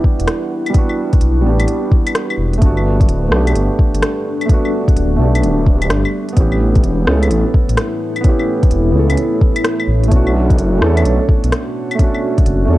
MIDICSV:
0, 0, Header, 1, 5, 480
1, 0, Start_track
1, 0, Tempo, 468750
1, 762, Time_signature, 4, 2, 24, 8
1, 13087, End_track
2, 0, Start_track
2, 0, Title_t, "Ambient pad"
2, 0, Program_c, 0, 92
2, 0, Note_on_c, 0, 64, 73
2, 0, Note_on_c, 0, 71, 86
2, 0, Note_on_c, 0, 78, 73
2, 2676, Note_on_c, 0, 55, 77
2, 2799, Note_on_c, 0, 69, 81
2, 3009, Note_on_c, 0, 62, 96
2, 3681, Note_off_c, 0, 78, 0
2, 4115, Note_off_c, 0, 64, 0
2, 6513, Note_on_c, 0, 57, 83
2, 6519, Note_off_c, 0, 55, 0
2, 6520, Note_off_c, 0, 62, 0
2, 6677, Note_on_c, 0, 64, 77
2, 7198, Note_on_c, 0, 73, 81
2, 7610, Note_off_c, 0, 69, 0
2, 10353, Note_on_c, 0, 59, 79
2, 10357, Note_off_c, 0, 57, 0
2, 10668, Note_on_c, 0, 66, 81
2, 11279, Note_off_c, 0, 71, 0
2, 11923, Note_off_c, 0, 64, 0
2, 13087, Note_off_c, 0, 59, 0
2, 13087, Note_off_c, 0, 66, 0
2, 13087, Note_off_c, 0, 73, 0
2, 13087, End_track
3, 0, Start_track
3, 0, Title_t, "Felt piano"
3, 0, Program_c, 1, 0
3, 0, Control_c, 1, 64, 127
3, 0, Note_on_c, 1, 55, 69
3, 0, Note_on_c, 1, 59, 64
3, 0, Note_on_c, 1, 62, 65
3, 0, Note_on_c, 1, 66, 80
3, 0, Note_on_c, 1, 67, 75
3, 698, Note_off_c, 1, 55, 0
3, 713, Note_on_c, 1, 55, 77
3, 729, Note_off_c, 1, 59, 0
3, 744, Note_on_c, 1, 59, 71
3, 749, Note_off_c, 1, 62, 0
3, 763, Note_off_c, 1, 67, 0
3, 773, Note_on_c, 1, 62, 68
3, 795, Note_off_c, 1, 66, 0
3, 795, Note_on_c, 1, 66, 85
3, 1432, Note_off_c, 1, 55, 0
3, 1447, Note_on_c, 1, 55, 69
3, 1453, Note_off_c, 1, 59, 0
3, 1467, Note_off_c, 1, 62, 0
3, 1471, Note_on_c, 1, 59, 65
3, 1478, Note_off_c, 1, 66, 0
3, 1498, Note_on_c, 1, 62, 66
3, 1526, Note_on_c, 1, 67, 74
3, 2638, Note_on_c, 1, 57, 75
3, 2644, Note_off_c, 1, 55, 0
3, 2650, Note_off_c, 1, 59, 0
3, 2665, Note_on_c, 1, 59, 67
3, 2670, Note_off_c, 1, 62, 0
3, 2684, Note_off_c, 1, 67, 0
3, 2695, Note_on_c, 1, 62, 70
3, 2697, Control_c, 1, 64, 0
3, 2720, Note_on_c, 1, 66, 87
3, 2897, Control_c, 1, 64, 127
3, 3342, Note_off_c, 1, 57, 0
3, 3357, Note_on_c, 1, 57, 72
3, 3371, Note_off_c, 1, 59, 0
3, 3386, Note_on_c, 1, 59, 66
3, 3388, Note_off_c, 1, 62, 0
3, 3400, Note_off_c, 1, 66, 0
3, 3414, Note_on_c, 1, 62, 65
3, 3443, Note_on_c, 1, 67, 80
3, 4544, Note_off_c, 1, 57, 0
3, 4559, Note_on_c, 1, 57, 75
3, 4572, Note_off_c, 1, 59, 0
3, 4587, Note_on_c, 1, 59, 71
3, 4588, Note_off_c, 1, 62, 0
3, 4602, Note_off_c, 1, 67, 0
3, 4615, Note_on_c, 1, 62, 70
3, 4640, Note_on_c, 1, 66, 84
3, 5270, Note_off_c, 1, 57, 0
3, 5285, Note_on_c, 1, 57, 73
3, 5294, Note_off_c, 1, 59, 0
3, 5308, Note_off_c, 1, 62, 0
3, 5315, Note_on_c, 1, 59, 66
3, 5320, Note_off_c, 1, 66, 0
3, 5340, Note_on_c, 1, 62, 67
3, 5365, Note_on_c, 1, 67, 76
3, 6462, Note_off_c, 1, 59, 0
3, 6477, Note_on_c, 1, 59, 76
3, 6483, Note_off_c, 1, 57, 0
3, 6508, Note_on_c, 1, 61, 66
3, 6511, Note_off_c, 1, 62, 0
3, 6523, Note_off_c, 1, 67, 0
3, 6535, Control_c, 1, 64, 0
3, 6535, Note_on_c, 1, 64, 70
3, 6560, Note_on_c, 1, 67, 86
3, 6696, Control_c, 1, 64, 127
3, 7194, Note_off_c, 1, 59, 0
3, 7209, Note_on_c, 1, 59, 68
3, 7214, Note_off_c, 1, 61, 0
3, 7228, Note_off_c, 1, 64, 0
3, 7233, Note_on_c, 1, 61, 65
3, 7241, Note_off_c, 1, 67, 0
3, 7262, Note_on_c, 1, 64, 66
3, 7289, Note_on_c, 1, 69, 75
3, 8390, Note_off_c, 1, 59, 0
3, 8405, Note_on_c, 1, 59, 81
3, 8417, Note_off_c, 1, 61, 0
3, 8432, Note_off_c, 1, 64, 0
3, 8432, Note_on_c, 1, 61, 69
3, 8445, Note_off_c, 1, 69, 0
3, 8460, Note_on_c, 1, 64, 71
3, 8487, Note_on_c, 1, 67, 85
3, 9108, Note_off_c, 1, 59, 0
3, 9123, Note_on_c, 1, 59, 71
3, 9137, Note_off_c, 1, 61, 0
3, 9151, Note_off_c, 1, 64, 0
3, 9155, Note_on_c, 1, 61, 65
3, 9164, Note_off_c, 1, 67, 0
3, 9182, Note_on_c, 1, 64, 70
3, 9208, Note_on_c, 1, 69, 83
3, 10321, Note_on_c, 1, 57, 78
3, 10322, Note_off_c, 1, 59, 0
3, 10331, Note_off_c, 1, 61, 0
3, 10346, Note_on_c, 1, 61, 74
3, 10352, Note_off_c, 1, 64, 0
3, 10365, Note_off_c, 1, 69, 0
3, 10375, Note_on_c, 1, 62, 72
3, 10376, Control_c, 1, 64, 0
3, 10400, Note_on_c, 1, 66, 89
3, 10579, Control_c, 1, 64, 127
3, 11023, Note_off_c, 1, 57, 0
3, 11039, Note_on_c, 1, 57, 73
3, 11051, Note_off_c, 1, 61, 0
3, 11067, Note_on_c, 1, 61, 64
3, 11068, Note_off_c, 1, 62, 0
3, 11081, Note_off_c, 1, 66, 0
3, 11097, Note_on_c, 1, 62, 65
3, 11123, Note_on_c, 1, 69, 82
3, 12220, Note_off_c, 1, 57, 0
3, 12235, Note_on_c, 1, 57, 78
3, 12252, Note_off_c, 1, 61, 0
3, 12267, Note_on_c, 1, 61, 72
3, 12269, Note_off_c, 1, 62, 0
3, 12282, Note_off_c, 1, 69, 0
3, 12294, Note_on_c, 1, 62, 73
3, 12320, Note_on_c, 1, 66, 84
3, 12936, Note_off_c, 1, 57, 0
3, 12951, Note_on_c, 1, 57, 74
3, 12962, Note_off_c, 1, 61, 0
3, 12977, Note_on_c, 1, 61, 67
3, 12988, Note_off_c, 1, 62, 0
3, 13000, Note_off_c, 1, 66, 0
3, 13005, Note_on_c, 1, 62, 70
3, 13033, Note_on_c, 1, 69, 81
3, 13087, Note_off_c, 1, 57, 0
3, 13087, Note_off_c, 1, 61, 0
3, 13087, Note_off_c, 1, 62, 0
3, 13087, Note_off_c, 1, 69, 0
3, 13087, End_track
4, 0, Start_track
4, 0, Title_t, "Detuned saw bass"
4, 0, Program_c, 2, 39
4, 197, Note_on_c, 2, 28, 88
4, 274, Note_off_c, 2, 28, 0
4, 1242, Note_on_c, 2, 35, 90
4, 1468, Note_off_c, 2, 35, 0
4, 1475, Note_on_c, 2, 33, 95
4, 1705, Note_off_c, 2, 33, 0
4, 2435, Note_on_c, 2, 28, 88
4, 2665, Note_off_c, 2, 28, 0
4, 2680, Note_on_c, 2, 31, 96
4, 3144, Note_off_c, 2, 31, 0
4, 3150, Note_on_c, 2, 26, 96
4, 3382, Note_off_c, 2, 26, 0
4, 3390, Note_on_c, 2, 35, 98
4, 3622, Note_off_c, 2, 35, 0
4, 3636, Note_on_c, 2, 31, 85
4, 3782, Note_off_c, 2, 31, 0
4, 4031, Note_on_c, 2, 31, 85
4, 4111, Note_off_c, 2, 31, 0
4, 5075, Note_on_c, 2, 26, 91
4, 5305, Note_off_c, 2, 26, 0
4, 5314, Note_on_c, 2, 35, 93
4, 5560, Note_on_c, 2, 26, 97
4, 5575, Note_off_c, 2, 35, 0
4, 6030, Note_off_c, 2, 26, 0
4, 6040, Note_on_c, 2, 31, 89
4, 6184, Note_off_c, 2, 31, 0
4, 6522, Note_on_c, 2, 33, 100
4, 6991, Note_off_c, 2, 33, 0
4, 7001, Note_on_c, 2, 28, 92
4, 7228, Note_off_c, 2, 28, 0
4, 7247, Note_on_c, 2, 37, 95
4, 7471, Note_off_c, 2, 37, 0
4, 7482, Note_on_c, 2, 33, 84
4, 7626, Note_off_c, 2, 33, 0
4, 7874, Note_on_c, 2, 33, 90
4, 7953, Note_off_c, 2, 33, 0
4, 8917, Note_on_c, 2, 28, 93
4, 9146, Note_off_c, 2, 28, 0
4, 9153, Note_on_c, 2, 37, 95
4, 9384, Note_off_c, 2, 37, 0
4, 10112, Note_on_c, 2, 33, 86
4, 10344, Note_off_c, 2, 33, 0
4, 10358, Note_on_c, 2, 35, 103
4, 10826, Note_off_c, 2, 35, 0
4, 10832, Note_on_c, 2, 30, 98
4, 11064, Note_off_c, 2, 30, 0
4, 11075, Note_on_c, 2, 40, 98
4, 11305, Note_off_c, 2, 40, 0
4, 11316, Note_on_c, 2, 35, 84
4, 11463, Note_off_c, 2, 35, 0
4, 11713, Note_on_c, 2, 35, 88
4, 11792, Note_off_c, 2, 35, 0
4, 12754, Note_on_c, 2, 30, 99
4, 12985, Note_off_c, 2, 30, 0
4, 12989, Note_on_c, 2, 40, 96
4, 13087, Note_off_c, 2, 40, 0
4, 13087, End_track
5, 0, Start_track
5, 0, Title_t, "Drums"
5, 43, Note_on_c, 9, 36, 99
5, 145, Note_off_c, 9, 36, 0
5, 202, Note_on_c, 9, 42, 54
5, 282, Note_off_c, 9, 42, 0
5, 282, Note_on_c, 9, 37, 100
5, 282, Note_on_c, 9, 42, 56
5, 384, Note_off_c, 9, 37, 0
5, 384, Note_off_c, 9, 42, 0
5, 680, Note_on_c, 9, 42, 31
5, 680, Note_on_c, 9, 75, 51
5, 761, Note_off_c, 9, 42, 0
5, 761, Note_on_c, 9, 42, 57
5, 764, Note_on_c, 9, 36, 107
5, 782, Note_off_c, 9, 75, 0
5, 864, Note_off_c, 9, 42, 0
5, 866, Note_off_c, 9, 36, 0
5, 916, Note_on_c, 9, 75, 35
5, 1018, Note_off_c, 9, 75, 0
5, 1156, Note_on_c, 9, 42, 32
5, 1159, Note_on_c, 9, 36, 106
5, 1240, Note_off_c, 9, 42, 0
5, 1240, Note_on_c, 9, 42, 51
5, 1261, Note_off_c, 9, 36, 0
5, 1342, Note_off_c, 9, 42, 0
5, 1635, Note_on_c, 9, 42, 53
5, 1635, Note_on_c, 9, 75, 52
5, 1720, Note_off_c, 9, 42, 0
5, 1720, Note_on_c, 9, 42, 58
5, 1737, Note_off_c, 9, 75, 0
5, 1822, Note_off_c, 9, 42, 0
5, 1962, Note_on_c, 9, 36, 106
5, 2064, Note_off_c, 9, 36, 0
5, 2116, Note_on_c, 9, 42, 54
5, 2116, Note_on_c, 9, 75, 64
5, 2202, Note_off_c, 9, 42, 0
5, 2202, Note_on_c, 9, 37, 106
5, 2202, Note_on_c, 9, 42, 55
5, 2218, Note_off_c, 9, 75, 0
5, 2304, Note_off_c, 9, 37, 0
5, 2304, Note_off_c, 9, 42, 0
5, 2357, Note_on_c, 9, 75, 57
5, 2460, Note_off_c, 9, 75, 0
5, 2595, Note_on_c, 9, 42, 31
5, 2681, Note_off_c, 9, 42, 0
5, 2681, Note_on_c, 9, 36, 118
5, 2681, Note_on_c, 9, 42, 56
5, 2783, Note_off_c, 9, 42, 0
5, 2784, Note_off_c, 9, 36, 0
5, 2838, Note_on_c, 9, 75, 31
5, 2940, Note_off_c, 9, 75, 0
5, 3078, Note_on_c, 9, 36, 104
5, 3080, Note_on_c, 9, 42, 32
5, 3161, Note_off_c, 9, 42, 0
5, 3161, Note_on_c, 9, 42, 50
5, 3180, Note_off_c, 9, 36, 0
5, 3263, Note_off_c, 9, 42, 0
5, 3398, Note_on_c, 9, 37, 101
5, 3501, Note_off_c, 9, 37, 0
5, 3554, Note_on_c, 9, 42, 56
5, 3554, Note_on_c, 9, 75, 49
5, 3640, Note_off_c, 9, 42, 0
5, 3640, Note_on_c, 9, 42, 54
5, 3657, Note_off_c, 9, 75, 0
5, 3742, Note_off_c, 9, 42, 0
5, 3880, Note_on_c, 9, 36, 105
5, 3983, Note_off_c, 9, 36, 0
5, 4040, Note_on_c, 9, 42, 55
5, 4120, Note_off_c, 9, 42, 0
5, 4120, Note_on_c, 9, 37, 107
5, 4120, Note_on_c, 9, 42, 57
5, 4223, Note_off_c, 9, 37, 0
5, 4223, Note_off_c, 9, 42, 0
5, 4517, Note_on_c, 9, 42, 30
5, 4517, Note_on_c, 9, 75, 48
5, 4599, Note_on_c, 9, 36, 114
5, 4602, Note_off_c, 9, 42, 0
5, 4602, Note_on_c, 9, 42, 53
5, 4620, Note_off_c, 9, 75, 0
5, 4702, Note_off_c, 9, 36, 0
5, 4704, Note_off_c, 9, 42, 0
5, 4761, Note_on_c, 9, 75, 31
5, 4863, Note_off_c, 9, 75, 0
5, 4996, Note_on_c, 9, 36, 101
5, 5002, Note_on_c, 9, 42, 31
5, 5084, Note_off_c, 9, 42, 0
5, 5084, Note_on_c, 9, 42, 51
5, 5098, Note_off_c, 9, 36, 0
5, 5186, Note_off_c, 9, 42, 0
5, 5479, Note_on_c, 9, 42, 52
5, 5479, Note_on_c, 9, 75, 49
5, 5564, Note_off_c, 9, 42, 0
5, 5564, Note_on_c, 9, 42, 53
5, 5582, Note_off_c, 9, 75, 0
5, 5667, Note_off_c, 9, 42, 0
5, 5800, Note_on_c, 9, 36, 107
5, 5902, Note_off_c, 9, 36, 0
5, 5956, Note_on_c, 9, 42, 52
5, 5956, Note_on_c, 9, 75, 59
5, 6042, Note_off_c, 9, 42, 0
5, 6042, Note_on_c, 9, 37, 109
5, 6042, Note_on_c, 9, 42, 55
5, 6059, Note_off_c, 9, 75, 0
5, 6145, Note_off_c, 9, 37, 0
5, 6145, Note_off_c, 9, 42, 0
5, 6196, Note_on_c, 9, 75, 54
5, 6298, Note_off_c, 9, 75, 0
5, 6438, Note_on_c, 9, 42, 29
5, 6520, Note_off_c, 9, 42, 0
5, 6520, Note_on_c, 9, 42, 52
5, 6522, Note_on_c, 9, 36, 109
5, 6622, Note_off_c, 9, 42, 0
5, 6624, Note_off_c, 9, 36, 0
5, 6676, Note_on_c, 9, 75, 33
5, 6778, Note_off_c, 9, 75, 0
5, 6917, Note_on_c, 9, 42, 29
5, 6920, Note_on_c, 9, 36, 97
5, 7001, Note_off_c, 9, 42, 0
5, 7001, Note_on_c, 9, 42, 49
5, 7022, Note_off_c, 9, 36, 0
5, 7103, Note_off_c, 9, 42, 0
5, 7243, Note_on_c, 9, 37, 103
5, 7345, Note_off_c, 9, 37, 0
5, 7400, Note_on_c, 9, 42, 50
5, 7400, Note_on_c, 9, 75, 48
5, 7483, Note_off_c, 9, 42, 0
5, 7483, Note_on_c, 9, 42, 54
5, 7503, Note_off_c, 9, 75, 0
5, 7585, Note_off_c, 9, 42, 0
5, 7723, Note_on_c, 9, 36, 101
5, 7825, Note_off_c, 9, 36, 0
5, 7878, Note_on_c, 9, 42, 52
5, 7960, Note_off_c, 9, 42, 0
5, 7960, Note_on_c, 9, 37, 104
5, 7960, Note_on_c, 9, 42, 56
5, 8063, Note_off_c, 9, 37, 0
5, 8063, Note_off_c, 9, 42, 0
5, 8356, Note_on_c, 9, 42, 28
5, 8356, Note_on_c, 9, 75, 46
5, 8439, Note_off_c, 9, 42, 0
5, 8439, Note_on_c, 9, 42, 53
5, 8442, Note_on_c, 9, 36, 112
5, 8458, Note_off_c, 9, 75, 0
5, 8542, Note_off_c, 9, 42, 0
5, 8544, Note_off_c, 9, 36, 0
5, 8596, Note_on_c, 9, 75, 34
5, 8698, Note_off_c, 9, 75, 0
5, 8836, Note_on_c, 9, 42, 31
5, 8838, Note_on_c, 9, 36, 99
5, 8918, Note_off_c, 9, 42, 0
5, 8918, Note_on_c, 9, 42, 50
5, 8940, Note_off_c, 9, 36, 0
5, 9020, Note_off_c, 9, 42, 0
5, 9316, Note_on_c, 9, 42, 51
5, 9316, Note_on_c, 9, 75, 52
5, 9395, Note_off_c, 9, 42, 0
5, 9395, Note_on_c, 9, 42, 51
5, 9419, Note_off_c, 9, 75, 0
5, 9497, Note_off_c, 9, 42, 0
5, 9640, Note_on_c, 9, 36, 105
5, 9742, Note_off_c, 9, 36, 0
5, 9789, Note_on_c, 9, 42, 53
5, 9789, Note_on_c, 9, 75, 64
5, 9876, Note_off_c, 9, 42, 0
5, 9876, Note_on_c, 9, 37, 102
5, 9876, Note_on_c, 9, 42, 55
5, 9892, Note_off_c, 9, 75, 0
5, 9979, Note_off_c, 9, 37, 0
5, 9979, Note_off_c, 9, 42, 0
5, 10032, Note_on_c, 9, 75, 56
5, 10134, Note_off_c, 9, 75, 0
5, 10276, Note_on_c, 9, 42, 29
5, 10358, Note_off_c, 9, 42, 0
5, 10358, Note_on_c, 9, 42, 53
5, 10359, Note_on_c, 9, 36, 106
5, 10461, Note_off_c, 9, 36, 0
5, 10461, Note_off_c, 9, 42, 0
5, 10514, Note_on_c, 9, 75, 34
5, 10617, Note_off_c, 9, 75, 0
5, 10755, Note_on_c, 9, 36, 96
5, 10757, Note_on_c, 9, 42, 30
5, 10839, Note_off_c, 9, 42, 0
5, 10839, Note_on_c, 9, 42, 51
5, 10857, Note_off_c, 9, 36, 0
5, 10942, Note_off_c, 9, 42, 0
5, 11080, Note_on_c, 9, 37, 98
5, 11182, Note_off_c, 9, 37, 0
5, 11234, Note_on_c, 9, 42, 53
5, 11234, Note_on_c, 9, 75, 54
5, 11319, Note_off_c, 9, 42, 0
5, 11319, Note_on_c, 9, 42, 56
5, 11336, Note_off_c, 9, 75, 0
5, 11422, Note_off_c, 9, 42, 0
5, 11558, Note_on_c, 9, 36, 101
5, 11660, Note_off_c, 9, 36, 0
5, 11713, Note_on_c, 9, 42, 51
5, 11799, Note_off_c, 9, 42, 0
5, 11799, Note_on_c, 9, 37, 101
5, 11799, Note_on_c, 9, 42, 57
5, 11902, Note_off_c, 9, 37, 0
5, 11902, Note_off_c, 9, 42, 0
5, 12197, Note_on_c, 9, 42, 28
5, 12197, Note_on_c, 9, 75, 52
5, 12280, Note_off_c, 9, 42, 0
5, 12280, Note_on_c, 9, 36, 104
5, 12280, Note_on_c, 9, 42, 54
5, 12299, Note_off_c, 9, 75, 0
5, 12383, Note_off_c, 9, 36, 0
5, 12383, Note_off_c, 9, 42, 0
5, 12436, Note_on_c, 9, 75, 35
5, 12539, Note_off_c, 9, 75, 0
5, 12676, Note_on_c, 9, 42, 33
5, 12678, Note_on_c, 9, 36, 94
5, 12759, Note_off_c, 9, 42, 0
5, 12759, Note_on_c, 9, 42, 54
5, 12780, Note_off_c, 9, 36, 0
5, 12862, Note_off_c, 9, 42, 0
5, 13087, End_track
0, 0, End_of_file